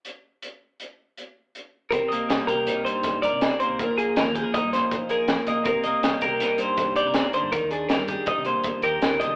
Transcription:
<<
  \new Staff \with { instrumentName = "Clean electric guitar" } { \time 5/4 \key c \minor \tempo 4 = 160 r1 r4 | bes'8 ees''4 bes'4 c''4 d''4 c''8 | bes'8 aes'8 bes'8 aes'8 ees''8 c''4 bes'4 ees''8 | bes'8 ees''4 bes'4 c''4 d''4 c''8 |
bes'8 aes'8 bes'8 aes'8 ees''8 c''4 bes'4 ees''8 | }
  \new Staff \with { instrumentName = "Clean electric guitar" } { \time 5/4 \key c \minor << { r1 r4 | r8 bes4 g'8 ees'4. bes'4 bes8~ | bes8 bes4 g'16 bes'16 ees'4. aes'4 bes8~ | bes8 bes4 g'8 ees'4. g'16 bes'4~ bes'16 |
r8 d'4 g'8 ees'4. g'4. | } \\ { r1 r4 | c4 g4. g,4. c4 | bes,4 f4. bes,4. bes,4 | c4 g4. g,4. c8 d8 |
ees4 g4. bes,4. ees8 d8 | } >> }
  \new Staff \with { instrumentName = "Fingered electric bass" } { \clef bass \time 5/4 \key c \minor r1 r4 | c,16 r16 c,16 r16 c16 r16 c8 c,8 r8 c,8 g,16 c8 r8 c,16 | bes,,16 bes,,8. aes,,16 ees,8 r8 g,8 r8. bes,,8 f,16 r16 bes,8 | c,16 r16 c,16 r16 c16 r16 c8 c,8 r8 c,8 g,16 c8 r8 g,16 |
ees,16 ees,8. d,16 g,8 r8 c8 r8. ees,8 d,8 c,8 | }
  \new DrumStaff \with { instrumentName = "Drums" } \drummode { \time 5/4 hh4 hh4 hh4 hh4 hh4 | <hh bd>8 hh8 <hh sn>8 <hh bd>8 hh8 hh8 <hh bd sn>8 hh8 <hh sn>8 hh8 | <hh bd>8 hh8 <hh sn>8 <hh bd>8 <hh bd>8 <hh sn>8 <hh bd>8 hh8 <hh sn>8 <hh bd>8 | <hh bd>8 hh8 <hh sn>8 <hh bd>8 <hh sn>8 hh8 <hh bd sn>8 hh8 <hh sn>8 hh8 |
<hh bd>8 hh8 <hh sn>8 <hh bd>8 <hh bd>8 hh8 <hh bd>8 hh8 <hh sn>8 <hh bd>8 | }
>>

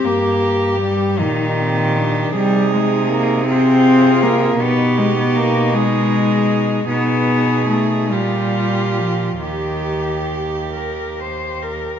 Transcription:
<<
  \new Staff \with { instrumentName = "Cello" } { \time 6/8 \key ees \major \tempo 4. = 52 g'4. g'4. | aes'4. aes'4. | g'4. aes'4. | gis'4. g'4. |
g'2~ g'8. r16 | }
  \new Staff \with { instrumentName = "Cello" } { \time 6/8 \key ees \major g'4. ees'8 c'8 d'8 | ees'4. f'4. | ees'2. | dis'4. f'4. |
g'4. bes'8 c''8 bes'8 | }
  \new Staff \with { instrumentName = "Cello" } { \clef bass \time 6/8 \key ees \major bes4 g8 ees4. | g8 aes8 bes8 c'4 bes8 | ces'8 aes16 ces'16 bes8 aes4. | b4 a8 g4 f8 |
ees4. r4. | }
  \new Staff \with { instrumentName = "Cello" } { \clef bass \time 6/8 \key ees \major g,4. bes,4. | c2. | ces2. | b,4. bes,4. |
ees,2~ ees,8. r16 | }
>>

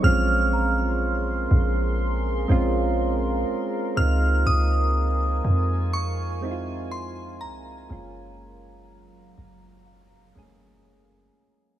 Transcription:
<<
  \new Staff \with { instrumentName = "Synth bell" } { \time 4/4 \key bes \minor \tempo 4 = 61 f'''2 r2 | f'''8 ees'''4. des'''4 c'''8 bes''8~ | bes''2. r4 | }
  \new Staff \with { instrumentName = "Celesta" } { \time 4/4 \key bes \minor r8 bes''2.~ bes''16 r16 | r1 | aes''2 f''2 | }
  \new Staff \with { instrumentName = "Ambient pad" } { \time 4/4 \key bes \minor << { <aes' c'''>1 | <f' aes''>1 | <ges bes''>1 | } \\ { bes'1~ | bes'1 | f''1 | } >> }
  \new Staff \with { instrumentName = "Synth keys" } { \time 4/4 \key bes \minor <aes c' des' f'>4. r4 <aes c' des' f'>4~ <aes c' des' f'>16 r16 | <aes c' ees' f'>4. r4 <aes c' ees' fes' f'>4~ <aes c' ees' fes' f'>16 r16 | <aes bes des' f'>4. r4 <aes a bes des' aes'>4~ <aes a bes des' aes'>16 r16 | }
  \new Staff \with { instrumentName = "808-style bass" } { \clef bass \time 4/4 \key bes \minor bes,,4. bes,,4 bes,,4 r8 | des,8 des,4 f,2 c,8 | ges,,4. ges,,4 ges,,4 r8 | }
>>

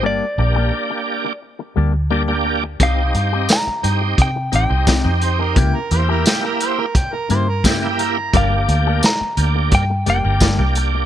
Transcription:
<<
  \new Staff \with { instrumentName = "Clean electric guitar" } { \time 4/4 \key g \minor \tempo 4 = 87 d''2 r2 | f''4 bes''4 g''8 g''4 r8 | r1 | f''4 bes''4 g''8 g''4 r8 | }
  \new Staff \with { instrumentName = "Harmonica" } { \time 4/4 \key g \minor r1 | r2. r8 c''16 bes'16 | g''16 ais'16 c''16 ais'16 g''16 ais'16 c''16 ais'16 g''16 ais'16 c''16 ais'16 g''8 ais''8 | r1 | }
  \new Staff \with { instrumentName = "Tonewheel organ" } { \time 4/4 \key g \minor r8 <bes d' g'>4~ <bes d' g'>16 r4 r16 <bes d' g'>16 <bes d' g'>8 r16 | <c' ees' g'>4 r8 <c' ees' g'>8. r16 <c' ees' g'>16 <c' ees' g'>16 r16 <c' ees' g'>8. | r8 <ais e' g'>4~ <ais e' g'>16 r4 r16 <ais e' g'>16 <ais e' g'>8 r16 | <bes d' g'>4 r8 <bes d' g'>8. r16 <bes d' g'>16 <bes d' g'>16 r16 <bes d' g'>8. | }
  \new Staff \with { instrumentName = "Clean electric guitar" } { \time 4/4 \key g \minor <g bes d' g'>16 r8 <bes d' g'>16 r4. <g bes d' g'>16 r16 <g bes d' g'>16 r8. | <c c' ees' g'>16 r8 <c' ees' g'>16 r4. <c c' ees' g'>16 r16 <c c' ees' g'>16 r8. | <cis ais e' g'>16 r8 <ais e' g'>16 r4. <cis ais e' g'>16 r16 <cis ais e' g'>16 r8. | <g bes d' g'>16 r8 <bes d' g'>16 r4. <g bes d' g'>16 r16 <g bes d' g'>16 r8. | }
  \new Staff \with { instrumentName = "Fingered electric bass" } { \clef bass \time 4/4 \key g \minor g,,16 r16 bes,,8 r4. d,4. | c,8 g,8 r8 g,8 c8 a,,16 c,8 f,8. | cis,16 r16 e,8 r4. g,4. | g,,8 d,8 r8 d,8 g,8 f,,16 g,,8 c,8. | }
  \new DrumStaff \with { instrumentName = "Drums" } \drummode { \time 4/4 r4 r4 r4 r4 | <hh bd>8 hh8 <hh sn tamb>8 hh8 <hh bd>8 hh8 <hh bd sn tamb>8 hh8 | <hh bd>8 hh8 <hh sn tamb>8 hh8 <hh bd>8 hh8 <hh bd sn tamb>8 hh8 | <hh bd>8 hh8 <hh sn tamb>8 hh8 <hh bd>8 hh8 <hh bd sn tamb>8 hh8 | }
>>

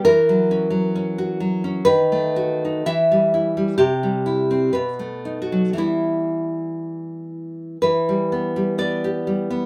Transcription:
\new Staff \with { instrumentName = "Nylon-string guitar" } { \time 2/4 \key e \minor \tempo 4 = 62 << { ais'2 | b'4 e''4 | g'4 \tuplet 3/2 { b'4 fis'8 } | e'4. r8 |
b'4 d''4 | } \\ { e16 fis16 cis'16 fis16 cis'16 fis'16 fis16 cis'16 | dis16 a16 fis'16 dis'16 e16 g16 e'16 g16 | c16 g16 e'16 c'16 b,16 a16 dis'16 fis16 | <e g b>2 |
e16 g16 b16 g16 b16 g'16 g16 b16 | } >> }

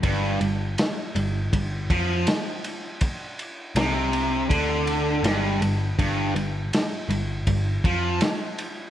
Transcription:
<<
  \new Staff \with { instrumentName = "Distorted electric guitar" } { \clef bass \time 4/4 \key c \major \tempo 4 = 81 g,8 g,8 r8 g,8 g,8 f8 r4 | r4 c4 d4 g,8 g,8 | g,8 g,8 r8 g,8 g,8 f8 r4 | }
  \new Staff \with { instrumentName = "Picked electric bass" } { \clef bass \time 4/4 \key c \major g,,8 g,,8 r8 g,,8 g,,8 f,8 r4 | r4 c,4 d,4 g,,8 g,,8 | g,,8 g,,8 r8 g,,8 g,,8 f,8 r4 | }
  \new DrumStaff \with { instrumentName = "Drums" } \drummode { \time 4/4 <bd cymr>8 cymr8 <cymr sn>8 cymr8 <bd cymr>8 <bd cymr>8 <cymr sn>8 cymr8 | <bd cymr>8 cymr8 <cymr sn>8 cymr8 <bd cymr>8 cymr8 <cymr sn>8 cymr8 | <bd cymr>8 cymr8 <cymr sn>8 cymr8 <bd cymr>8 <bd cymr>8 <cymr sn>8 cymr8 | }
>>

